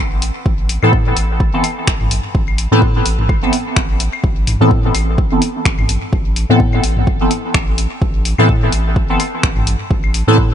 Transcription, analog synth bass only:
0.00 A1
0.46 A1
0.83 A2
1.17 A1
1.53 G1
1.87 A1
2.35 A1
2.72 A2
3.06 A1
3.42 G1
3.76 A1
4.24 A1
4.61 A2
4.95 A1
5.31 G1
5.65 A1
6.13 A1
6.50 A2
6.83 A1
7.20 G1
7.54 A1
8.02 A1
8.38 A2
8.73 A1
9.09 G1
9.43 A1
9.91 A1
10.27 A2

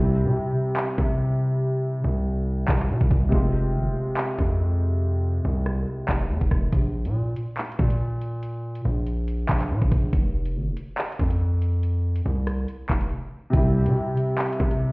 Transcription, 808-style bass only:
Already playing: C2
0.24 C3
0.98 C3
2.04 C2
2.68 C2
2.89 C3
3.01 C2
3.11 C2
3.32 F1
3.75 G#1
3.86 F1
4.39 F2
5.45 C2
6.09 F1
6.30 F2
6.41 F1
6.51 F1
6.72 A#1
7.05 A#2
7.79 A#2
8.85 A#1
9.49 A#1
9.70 A#2
9.82 A#1
9.92 A#1
10.13 F1
10.55 G#1
10.67 F1
11.19 F2
12.26 C2
12.90 F1
13.53 C2
13.86 C3
14.60 C3

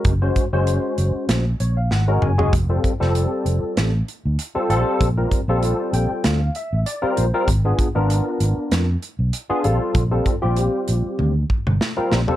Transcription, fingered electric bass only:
0.05 F#1
0.53 F#1
0.98 F#1
1.15 muted fingered electric bass stroke
1.29 A#1
1.60 A#1
1.91 G#1
2.22 F#1
2.53 F1
3.01 F1
3.45 F1
3.63 muted fingered electric bass stroke
3.78 A1
4.25 D2
4.56 muted fingered electric bass stroke
4.70 A#1
5.01 A#1
5.48 A#1
5.93 A#1
6.11 muted fingered electric bass stroke
6.25 D2
6.73 A1
7.03 muted fingered electric bass stroke
7.18 A#1
7.48 G#1
7.96 G#1
8.40 G#1
8.57 muted fingered electric bass stroke
8.72 F2
9.19 B1
9.50 muted fingered electric bass stroke
9.65 A#1
9.95 A#1
10.44 A#1
10.89 A#1
11.06 muted fingered electric bass stroke
11.20 D2
11.67 G1
11.98 muted fingered electric bass stroke
12.12 A#1

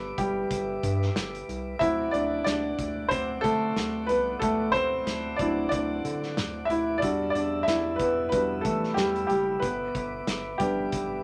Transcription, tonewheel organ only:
Already playing: B4 E5 D6
1.81 D5 F#5
7.03 D5 E5 E6
9.63 B4 D6

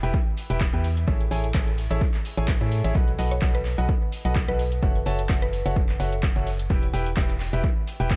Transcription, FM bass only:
0.03 E1
0.50 E1
0.74 E2
1.08 A1
1.31 A1
1.55 A1
1.91 A1
2.38 A1
2.61 A2
2.84 A1
2.95 B1
3.19 B1
3.42 B1
3.78 B1
4.25 B1
4.48 B1
4.83 F#1
5.06 F#1
5.30 F#1
5.66 F#1
6.00 F#1
6.36 F#1
6.70 E1
6.94 E1
7.17 E1
7.53 E1
8.00 E1

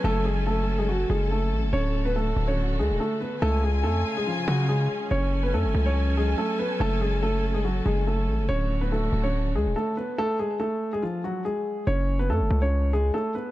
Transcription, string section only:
Already playing: F#3 C#4 A4 G#5
1.73 D3 A3 F#4
3.42 C#3 C#4 F4 G#5
5.11 F#3 A4 G#5
8.49 D3 A3 F#4

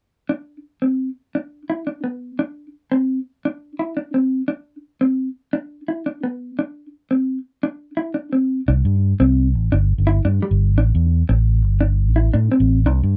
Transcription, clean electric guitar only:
0.29 D4
0.82 C4
1.35 D4
1.70 E4
1.87 D4
2.04 B3
2.39 D4
2.92 C4
3.45 D4
3.79 E4
3.97 D4
4.14 C4
4.48 D4
5.01 C4
5.53 D4
5.88 E4
6.06 D4
6.23 B3
6.59 D4
7.11 C4
7.63 D4
7.97 E4
8.14 D4
8.33 C4
8.68 D4
9.20 C4
9.72 D4
10.07 E4
10.25 D4
10.42 G3
10.78 D4
11.29 muted clean electric guitar stroke
11.81 D4
12.16 E4
12.34 D4
12.52 C4
12.86 D4

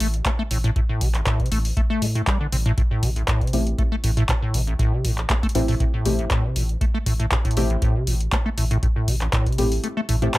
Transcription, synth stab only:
3.53 A3 C4 E4 G4
5.55 A3 C4 E4 G4
6.05 A3 C4 E4 G4
7.57 A3 C4 E4 G4
9.58 A3 C4 E4 G4
10.22 A3 C4 E4 G4

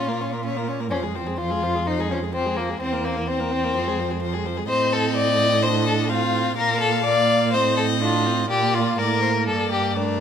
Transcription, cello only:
Already playing: A#2
0.91 F2
2.81 E2
3.75 F2
4.69 A2
6.57 A#2
7.53 A2
8.50 A#2
8.98 A2
9.47 G2

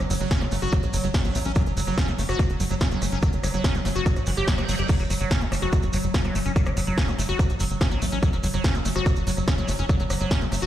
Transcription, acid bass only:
0.10 F#3
0.21 F#3
0.31 C#4
0.41 F#3
0.52 A3
0.62 F#4
0.73 F#3
0.93 F#3
1.04 F#3
1.14 C#4
1.25 F#3
1.35 A3
1.46 C#4
1.56 F#3
1.77 F#3
1.87 F#3
1.98 C#4
2.08 F#3
2.19 A3
2.29 F#4
2.39 F#3
2.60 F#3
2.71 F#3
2.81 C#4
2.91 F#3
3.02 A3
3.12 C#4
3.23 F#3
3.44 F#3
3.54 F#3
3.64 C#4
3.75 F#3
3.85 A3
3.96 F#4
4.06 F#3
4.27 E3
4.37 G4
4.48 F#3
4.58 F#3
4.68 F#3
4.79 G4
4.89 F#3
5.00 F#3
5.10 F#3
5.21 F#3
5.31 C#4
5.41 F#3
5.52 A3
5.62 F#4
5.73 F#3
5.93 F#3
6.14 C#4
6.25 F#3
6.35 A3
6.46 C#4
6.56 F#3
6.66 F#3
6.77 F#3
6.87 F#3
6.98 C#4
7.08 F#3
7.18 A3
7.29 F#4
7.39 F#3
7.60 F#3
7.81 C#4
7.91 F#3
8.02 A3
8.12 C#4
8.23 F#3
8.33 F#3
8.43 F#3
8.54 F#3
8.64 C#4
8.75 F#3
8.85 A3
8.96 F#4
9.06 F#3
9.27 F#3
9.48 C#4
9.58 F#3
9.69 A3
9.79 C#4
9.89 F#3
10.00 F#3
10.10 F#3
10.21 F#3
10.31 C#4
10.41 F#3
10.52 A3
10.62 F#4

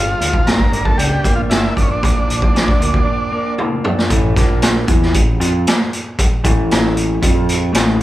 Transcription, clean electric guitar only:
Already playing: G2
0.19 F3
0.47 D4
0.71 A#3
0.98 D4
1.24 A#3
1.51 F3
1.77 D4
2.02 A#2
2.28 F3
2.54 D4
2.80 A#3
3.05 D4
3.32 A#3
3.58 F3
3.84 D4
4.09 A2 E3 A3
4.36 A#2 F3 A#3
4.87 E3 B3 E4
5.16 A2 E3
5.40 F3 C4 F4
6.44 A2 E3 A3
7.22 F3 C4 F4
7.73 A2 E3 A3

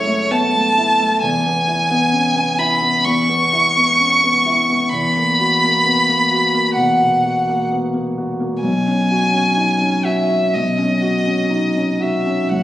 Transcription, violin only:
Already playing: C#5
0.31 A5
1.22 G#5
2.58 B5
3.04 C#6
4.89 B5
6.75 F#5
8.63 G#5
10.05 E5
10.54 D#5
12.01 E5
12.53 F#5

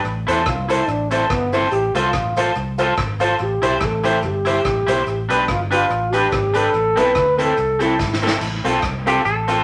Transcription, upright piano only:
0.27 E4 A4 C5
0.69 E4 A4 C5
1.11 E4 A4 C5
1.52 E4 A4 C5
1.95 F4 A4 C5
2.37 F4 A4 C5
2.78 F4 A4 C5
2.98 A4 C5
3.20 F4 A4 C5
3.62 E4 G4 C5
4.04 E4 G4 C5
4.46 E4 G4 C5
4.88 E4 G4 C5
5.29 D4 G4 B4
5.71 D4 G4 B4
6.13 D4 G4 B4
6.32 G4 B4
6.55 D4 G4 B4
6.96 C4 E4 A4
7.38 C4 E4 A4
7.81 C4 E4 A4
8.22 C4 E4 A4
8.64 C4 F4 A4
9.06 C4 F4 A4
9.47 C4 F4 A4

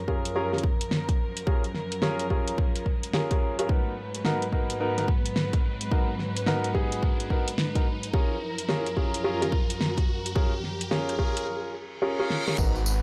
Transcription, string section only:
Already playing: F#2 F3 A#4
3.69 G#2 F#3 B4
8.13 F#2 F3 A#4
12.58 G#3 F#4 B4

